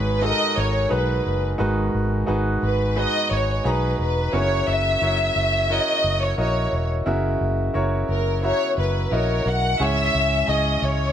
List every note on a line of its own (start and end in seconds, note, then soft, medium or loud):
0.00 0.31 G#1 medium
0.00 1.59 G#2 medium
0.00 1.59 D#3 medium
0.00 0.22 D#4 medium
0.00 0.22 F#4 medium
0.00 0.22 G#4 medium
0.00 0.21 B4 medium
0.00 0.91 B4 medium
0.00 0.20 C#5 medium
0.22 0.87 D#4 medium
0.22 0.87 F#4 medium
0.22 0.87 G#4 medium
0.22 0.30 A4 medium
0.22 0.58 D#5 loud
0.30 0.91 A#4 medium
0.57 0.85 G#1 medium
0.57 0.92 C#5 medium
0.89 1.20 B1 medium
0.89 1.55 D#4 medium
0.89 1.56 F#4 medium
0.89 1.56 G#4 medium
0.89 1.56 B4 medium
0.89 1.44 B4 medium
1.26 1.54 F#1 medium
1.58 1.88 G#1 medium
1.58 2.58 G#2 medium
1.58 2.58 D#3 medium
1.58 2.24 D#4 medium
1.58 2.24 F#4 medium
1.58 2.24 G#4 medium
1.58 2.25 B4 medium
1.95 2.22 G#1 medium
2.26 2.56 G#1 medium
2.26 2.92 D#4 medium
2.26 2.92 F#4 medium
2.26 2.93 G#4 medium
2.26 2.93 B4 medium
2.63 3.05 G#1 medium
2.63 2.95 B4 medium
2.96 3.61 D#4 medium
2.96 3.61 F#4 medium
2.96 3.61 G#4 medium
2.96 3.62 B4 medium
2.96 3.31 D#5 medium
3.31 3.59 G#1 medium
3.31 3.66 C#5 medium
3.64 3.93 B1 medium
3.64 4.29 D#4 medium
3.64 4.30 F#4 medium
3.64 4.30 G#4 medium
3.64 4.00 B4 medium
3.64 4.30 A#5 medium
3.99 4.27 E1 medium
3.99 4.32 B4 medium
4.32 4.61 F#1 medium
4.32 5.32 C#3 medium
4.32 4.98 E4 medium
4.32 4.98 F#4 medium
4.32 4.98 A#4 medium
4.32 4.99 C#5 medium
4.32 4.68 C#5 loud
4.68 4.96 F#1 medium
4.68 5.71 E5 loud
5.01 5.30 F#1 medium
5.01 5.66 E4 medium
5.01 5.67 F#4 medium
5.01 5.67 A#4 medium
5.01 5.67 C#5 medium
5.36 5.78 F#1 medium
5.69 6.34 E4 medium
5.69 6.35 F#4 medium
5.69 6.35 A#4 medium
5.69 6.35 C#5 medium
5.69 6.22 D#5 loud
6.04 6.32 F#1 medium
6.22 6.38 C#5 medium
6.37 6.66 A#1 medium
6.37 7.03 E4 medium
6.37 7.03 F#4 medium
6.37 7.03 A#4 medium
6.37 6.87 C#5 medium
6.37 7.03 D#5 medium
6.73 7.01 E1 medium
7.06 7.35 F#1 medium
7.06 8.05 C#3 medium
7.06 7.71 E4 medium
7.06 7.71 F#4 medium
7.06 7.72 A#4 medium
7.06 7.72 E5 medium
7.41 7.69 F#1 medium
7.74 8.03 F#1 medium
7.74 8.39 E4 medium
7.74 8.39 F#4 medium
7.74 8.40 A#4 medium
7.74 8.40 C#5 medium
8.09 8.51 F#1 medium
8.09 8.41 A#4 medium
8.43 9.08 E4 medium
8.43 9.08 F#4 medium
8.43 8.76 C#5 loud
8.43 9.09 E5 medium
8.43 9.08 A#5 medium
8.78 9.06 F#1 medium
8.78 9.10 B4 medium
9.11 9.40 A#1 medium
9.11 9.76 E4 medium
9.11 9.77 F#4 medium
9.11 9.77 A#4 medium
9.11 9.64 A#4 medium
9.11 9.45 C#5 medium
9.11 9.77 D#5 medium
9.46 9.74 B1 medium
9.46 9.81 F#5 medium
9.80 10.08 C#2 medium
9.80 10.79 G#2 medium
9.80 10.45 C#4 medium
9.80 10.45 E4 medium
9.80 10.45 G#4 medium
9.80 10.46 C#5 medium
9.80 10.49 E5 loud
10.15 10.43 C#2 loud
10.47 10.76 C#2 medium
10.47 11.12 C#4 medium
10.47 11.12 E4 medium
10.47 11.12 G#4 medium
10.47 11.12 D#5 medium
10.47 10.83 D#5 medium
10.82 11.12 C#2 medium
10.82 11.12 C#5 medium